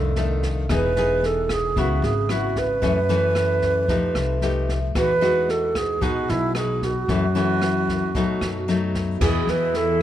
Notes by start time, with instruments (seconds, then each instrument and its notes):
Already playing: upright bass C2, nylon-string guitar F2 D#3 A3 D4, alto flute A4
0.16 nylon-string guitar D#3 A3 D4, snare
0.43 kick, snare
0.69 upright bass E1, nylon-string guitar E3 B3 D#4 G#4, kick, cross-stick, snare
0.74 alto flute B4
0.96 nylon-string guitar B3 D#4 G#4, snare
1.23 alto flute A4, snare
1.49 alto flute G#4, kick, cross-stick, snare
1.76 upright bass C#2, nylon-string guitar C#3 B3 E4 F#4, alto flute F#4, kick, snare
2.02 upright bass G#1, alto flute G#4, snare
2.29 nylon-string guitar B3 E4 F#4, alto flute F#4, cross-stick, snare
2.56 alto flute B4, kick, snare
2.82 nylon-string guitar F#2 E3 A3 C#4, upright bass F#2, kick, snare
3.09 nylon-string guitar E3 A3 C#4, snare
3.35 cross-stick, snare
3.62 kick, snare
3.88 upright bass F2, nylon-string guitar F3 A3 D#4 G4, kick, snare
4.15 upright bass C2, cross-stick, snare
4.42 nylon-string guitar A3 D#4 G4, snare
4.69 kick, snare
4.95 upright bass E2, nylon-string guitar E3 G#3 D#4 F#4, alto flute B4, kick, cross-stick, snare
5.21 nylon-string guitar G#3 D#4 F#4, snare
5.49 alto flute A4, snare
5.75 alto flute G#4, kick, cross-stick, snare
6.01 upright bass B1, nylon-string guitar B2 G#3 D#4 F#4, alto flute F#4, kick, snare
6.29 upright bass B1, alto flute E4, snare
6.55 nylon-string guitar G#3 D#4 F#4, alto flute G#4, cross-stick, snare
6.82 alto flute F#4, kick, snare
7.08 upright bass F#2, nylon-string guitar F#2 E3 A3 C#4, kick, snare
7.35 nylon-string guitar E3 A3 C#4, snare
7.62 cross-stick, snare
7.88 kick, snare
8.15 upright bass B1, nylon-string guitar B2 F#3 A3 D#4, kick, snare
8.41 upright bass F#2, cross-stick, snare
8.68 nylon-string guitar F#3 A3 D#4, snare
8.94 kick, snare
9.18 upright bass E2, nylon-string guitar E3 B3 G#4, flute E4, tine electric piano F#4 G#4 B4, kick, cross-stick, snare, crash
9.23 alto flute G#4, tine electric piano D#5
9.47 upright bass E2, alto flute B4, snare
9.74 alto flute A4, snare